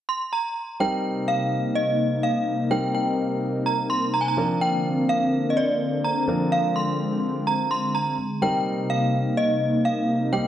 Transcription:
0.09 C6
0.33 A#5
0.80 C3 G3 A#3 C4 D#4 A#4 G5
1.28 F5
1.75 D#5
2.23 F5
2.70 G3 C4 D#4 A#4 G5
2.95 G5
3.66 A#5
3.90 C6
4.14 A#5
4.21 G#5
4.28 A#5
4.37 D3 F3 A#3 C4 D4 A#4
4.61 G5
5.09 F5
5.50 D#5
5.57 D5
6.04 A#5
6.28 F3 G#3 C4 D4 A#4
6.52 F5
6.76 C6
7.47 A#5
7.71 C6
7.95 A#5
8.42 C3 G3 A#3 C4 D#4 A#4 G5
8.90 F5
9.37 D#5
9.85 F5
10.32 G3 C4 D#4 G4 G5

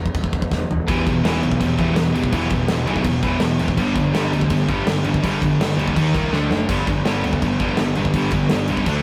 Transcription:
0.06 kick
0.15 E1, kick, china
0.24 kick
0.33 E1, kick
0.42 kick
0.51 E1, kick, snare
0.71 E1, floor tom
0.87 E1 E2 B2 E3 B3 E4 G4, kick, crash
1.06 E1 E2 B2, kick, crash
1.23 E1 E2 B2 E3, snare, crash
1.43 B1 E2 B2, crash
1.52 kick
1.61 E1 E2 B2, kick, crash
1.79 E1 E2 B2 E3, kick, crash
1.96 E1 E2 B2, snare, crash
2.14 E1 E2 B2 E3 B3 E4 G4, crash
2.24 kick
2.31 E1 E2 B2 E3 B3 E4 G4, kick, crash
2.50 E1 E2 B2, kick, crash
2.68 E1 E2 B2, snare, crash
2.87 B1 E2 B2 E3, crash
2.96 kick
3.04 E1 E2 B2, kick, crash
3.23 E1 E2 B2 E3, kick, crash
3.40 E1 E2 B2, snare, crash
3.59 E1 E2 B2 E3 B3 E4 G4, crash
3.68 kick
3.76 G1 G2 D3 G3 B3 D4 G4, kick, crash
3.95 G1 G2 D3, kick, crash
4.14 G1 G2 D3 G3, snare, crash
4.32 D2 G2 D3, crash
4.41 kick
4.50 G1 G2 D3, kick, crash
4.68 G1 G2 D3 G3, kick, crash
4.86 G1 G2 D3, snare, crash
5.04 G1 G2 D3 G3 B3 D4 G4, crash
5.14 kick
5.22 G1 G2 D3 G3 B3 D4 G4, kick, crash
5.42 G1 G2 D3, kick, crash
5.60 G1 G2 D3, snare, crash
5.77 D2 G2 D3 G3, crash
5.88 kick
5.95 D#2 D#3 A#3 D#4 A#4, kick, crash
6.14 C2 D#3 A#3 D#4, kick, crash
6.31 D2 D3 A3 D4 A4, snare
6.50 F#1 D3 A3, snare
6.67 G1 G2 D3 G3 B3 D4 G4, kick, splash, crash
6.87 G1 G2 D3, kick, crash
7.05 G1 G2 D3 G3, snare, crash
7.23 D2 G2 D3, crash
7.33 kick
7.42 G1 G2 D3, kick, crash
7.60 G1 G2 D3 G3, kick, crash
7.77 G1 G2 D3, snare, crash
7.95 G1 G2 D3 G3 B3 D4 G4, crash
8.05 kick
8.13 G1 G2 D3 G3 B3 D4 G4, kick, crash
8.31 G1 G2 D3, kick, crash
8.49 G1 G2 D3, snare, crash
8.68 C2 G2 D3 G3, crash
8.77 kick
8.85 D2 D3 A3 D4 A4, kick, crash

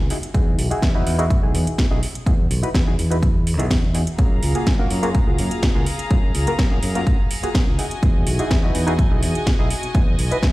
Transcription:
0.10 D#4 E4 F#4 G#4, open hi-hat
0.23 closed hi-hat
0.34 E2 D#4 E4 F#4 G#4, kick, closed hi-hat
0.58 B1, open hi-hat
0.70 D#4 E4 F#4 G#4, muted fingered electric bass stroke, closed hi-hat
0.82 E2, kick, snare, closed hi-hat
0.94 D#4 E4 F#4 B4
1.07 E2, open hi-hat
1.19 D#4 E4 F#4 G#4, closed hi-hat
1.30 kick, closed hi-hat
1.42 B1 D#4 E4 F#4 G#4
1.54 E2, open hi-hat
1.67 closed hi-hat
1.78 kick, snare, closed hi-hat
1.91 B1 D#4 E4 F#4 G#4
2.03 open hi-hat
2.15 closed hi-hat
2.26 E2 D#4 E4 F#4 G#4, kick, closed hi-hat
2.51 B1, open hi-hat
2.63 D#4 E4 F#4 B4, muted fingered electric bass stroke, closed hi-hat
2.75 E2, kick, snare, closed hi-hat
2.87 D#4 E4 F#4 G#4
2.99 E2, open hi-hat
3.11 D#4 E4 F#4 B4, closed hi-hat
3.23 kick, closed hi-hat
3.47 open hi-hat
3.59 B1 D#4 E4 F#4 G#4, closed hi-hat
3.71 E2, kick, snare, open hi-hat
3.94 D#4 E4 F#4 G#4, open hi-hat
4.07 closed hi-hat
4.18 F#2 A#3 F4 F#4 G#4 F5 A#5, kick, closed hi-hat
4.43 C#2, open hi-hat
4.55 A#3 F4 F#4 G#4, closed hi-hat
4.67 F#2, kick, snare, closed hi-hat
4.79 A#3 F4 F#4 A#4
4.91 F#2, open hi-hat
5.03 A#3 F4 F#4 G#4, closed hi-hat
5.15 kick, closed hi-hat
5.27 C#2 A#3 F4 F#4 G#4
5.38 F#2, open hi-hat
5.51 closed hi-hat
5.63 kick, snare, closed hi-hat
5.75 C#2 A#3 F4 F#4 G#4
5.86 open hi-hat
5.99 closed hi-hat
6.11 F#2 A#3 F4 F#4 G#4, kick, closed hi-hat
6.35 C#2, open hi-hat
6.47 A#3 F4 F#4 A#4, muted fingered electric bass stroke, closed hi-hat
6.59 F#2, kick, snare, closed hi-hat
6.71 A#3 F4 F#4 G#4
6.83 F#2, open hi-hat
6.95 A#3 F4 F#4 A#4, closed hi-hat
7.07 kick, closed hi-hat
7.31 open hi-hat
7.43 A#3 F4 F#4 G#4, muted fingered electric bass stroke, closed hi-hat
7.55 F#2, kick, snare, closed hi-hat
7.67 C#2
7.78 D#4 E4 F#4 G#4 D#5 G#5, open hi-hat
7.91 closed hi-hat
8.03 E2 D#4 E4 F#4 G#4, kick, closed hi-hat
8.27 B1, open hi-hat
8.39 D#4 E4 F#4 G#4, muted fingered electric bass stroke, closed hi-hat
8.51 E2, kick, snare, closed hi-hat
8.63 D#4 E4 F#4 B4
8.75 E2, open hi-hat
8.87 D#4 E4 F#4 G#4, closed hi-hat
8.99 kick, closed hi-hat
9.11 B1 D#4 E4 F#4 G#4
9.23 E2, open hi-hat
9.35 closed hi-hat
9.47 kick, snare, closed hi-hat
9.59 B1 D#4 E4 F#4 G#4
9.70 open hi-hat
9.83 closed hi-hat
9.95 E2 D#4 E4 F#4 G#4, kick, closed hi-hat
10.19 B1, open hi-hat
10.31 D#4 E4 F#4 B4, muted fingered electric bass stroke, closed hi-hat
10.43 E2, kick, snare, closed hi-hat

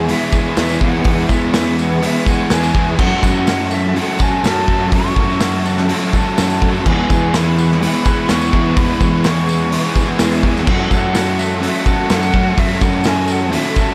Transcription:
Already playing: E2 E3 G#3 B3 C#4 E4 G#4 B4 E5 G#5 C#6
0.08 E3 G#3 B3 E4 G#4 E5, open hi-hat
0.32 B3 E4 G#4, kick, tambourine
0.56 E2 G#3 B3 C#4 E4 E5, snare, open hi-hat, tambourine
0.61 G#4
0.69 tambourine
0.81 E2 B3 E4 G#4 F#5, kick, tambourine
0.85 B3
1.04 E2 E3 G#3 B3 E4, kick, open hi-hat
1.08 G#4
1.28 E2 B3 G#4 E5, kick, tambourine
1.32 B3 E4
1.52 G#3 B3 C#4 E4 E5, snare, open hi-hat, tambourine
1.57 G#4
1.68 tambourine
1.76 G#4 F#5, tambourine
2.01 E3 G#3 B3 E4 G#4, open hi-hat
2.05 E5
2.25 E4 G#4 F#5, kick, tambourine
2.30 B3
2.50 E2 G#3 B3 C#4 E4 G#4 G#5, snare, open hi-hat, tambourine
2.63 tambourine
2.74 E2 B3 E4 G#4, kick, tambourine
2.97 F#2 E3 F#3 C#4 F#4 A4 F#5 C#6, kick, crash
3.02 A4
3.22 F#2 A3 F#4 A4, kick, tambourine
3.27 C#4
3.37 F#5
3.46 F#3 C#4 F#4 A4, snare, open hi-hat, tambourine
3.59 tambourine
3.71 A4 E5, tambourine
3.94 F#3 A3 C#4 F#4 A4 F#5, open hi-hat
4.18 C#4 F#4 A4 G#5, kick, tambourine
4.43 F#2 F#3 C#4 F#4 A4 A5, snare, open hi-hat, tambourine
4.66 F#2 A3 A4, kick, tambourine
4.70 C#4 F#4
4.91 F#2 E3 F#3 C#4 F#4 F#5 C#6, kick, open hi-hat, tambourine
4.96 A4
5.16 F#2 A3 F#4 A4, kick
5.20 C#4
5.30 tambourine
5.40 F#3 C#4 F#4 A4, snare, open hi-hat, tambourine
5.65 A4, tambourine
5.77 snare, tambourine
5.89 F#3 A3 C#4 F#4 A4, open hi-hat
6.02 tambourine
6.13 C#4 F#4 A4, kick, tambourine
6.37 F#2 F#3 C#4 F#4 A5, snare, open hi-hat, tambourine
6.42 A4
6.50 tambourine
6.61 F#2 A3 C#4 F#4 A4, kick
6.74 tambourine
6.85 E2 E3 G#3 B3 E4 B4 G#5, kick, crash
6.89 G#4
7.09 E2 B3 E4 G#4, kick, tambourine
7.13 B3
7.32 G#3 B3 C#4 B5, snare, open hi-hat, tambourine
7.36 E4 G#4
7.45 tambourine
7.57 G#4, tambourine
7.71 snare
7.80 E3 G#3 B3 E4 G#4 B5, open hi-hat
8.05 E4 G#4, kick, tambourine
8.09 B3
8.28 E2 G#3 B3 C#4 E4 G#4 C#6, snare, open hi-hat, tambourine
8.41 tambourine
8.52 E2 B3 E4 G#4, kick, tambourine
8.56 B3
8.76 E2 E3 G#3 B3 B5, kick, open hi-hat
8.80 E4 G#4
9.00 E2 B3 E4 G#4, kick, tambourine
9.04 B3
9.23 G#3 B3 C#4 E4 G#4 C#6, snare, open hi-hat, tambourine
9.37 tambourine
9.47 G#4, tambourine
9.71 E3 G#3 B3 E4 G#4, open hi-hat
9.94 E4 G#4, kick, tambourine
9.98 B3
10.18 E2 G#3 B3 C#4 E4 G#4, snare, open hi-hat, tambourine
10.32 tambourine
10.43 E2 B3 E4 G#4, kick, tambourine
10.56 snare
10.66 F#2 E3 F#3 C#4 F#4 A4 E5 F#5, kick, crash
10.89 F#2 A3 F#4 A4 F#5, kick, tambourine
10.93 C#4
11.13 F#3 C#4 F#4, snare, open hi-hat, tambourine
11.17 A4
11.27 tambourine
11.38 A4 E5, tambourine
11.60 F#3 A3 C#4 F#4 A4, open hi-hat
11.65 E5
11.85 C#4 F#4 A4 F#5, kick, tambourine
12.08 F#2 F#3 C#4 F#4 A4 F#5, snare, open hi-hat, tambourine
12.12 C#4
12.23 tambourine
12.33 F#2 A3 C#4 F#4 A4, kick, tambourine
12.56 F#2 E3 F#3 C#4 F#4 A4 E5 G#5, kick, open hi-hat, tambourine
12.80 F#2 A3 C#4 F#4 A4 F#5, kick, tambourine
12.93 tambourine
13.04 F#3 C#4 F#4 A4 G#5, snare, open hi-hat, tambourine
13.28 A4 F#5, tambourine
13.40 tambourine
13.51 F#3 A3 C#4 F#4 A4 E5, open hi-hat, tambourine
13.65 tambourine
13.76 F#4 A4, kick, tambourine
13.80 C#4
13.89 tambourine

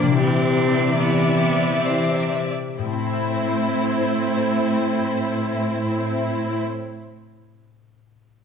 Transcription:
Already playing: A#2 F3 A#3 D4 A#4 C5 D5
0.02 C3
0.07 D4
0.11 E4
0.16 G4 D5
0.20 C3 E3 C4 E5
1.00 B3
1.85 E3 C4
2.77 A2 A3 C4 E4 C5
2.85 A3
2.92 C4
3.00 E4
3.06 B5
3.13 E5

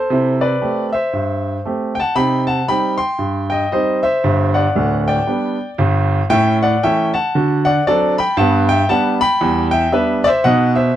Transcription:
Already playing: A4 C5
0.10 C3 E4
0.41 B4 D5
0.62 A3 C4 G4
0.93 C5 E5
1.13 G2
1.65 A3 C4 G4
1.95 G5
2.00 F#5 A5
2.16 C3 D#4 G5 B5
2.47 F#5 A5
2.68 G3 C4 D#4 G5 B5
2.98 G5 C6
3.19 G2
3.50 D#5 G5
3.72 G3 C4 D#4 C5 D#5
4.03 C5 E5
4.24 G1 G2
4.54 D5 F#5
4.76 D1 D2
5.08 D5 G5
5.27 G3 B3 D4
5.78 G1 G2
6.30 A2 C#4 E5 G5
6.63 D5 F#5
6.83 E3 A3 C#4 E5 G5
7.14 F#5 A5
7.35 D3 F#4
7.65 D5 F#5
7.87 F#3 C4 D4 A4 D5
8.18 G5 B5
8.37 G2 B3 F#5 A5
8.69 E5 G5
8.89 G3 B3 D4 F#5 A5
9.21 G5 B5
9.41 E2 G3
9.71 E5 G5
9.92 G3 B3 D4 B4 E5
10.24 C5 D5 E5
10.44 B2 D#4 D#5 F#5
10.75 C5 E5

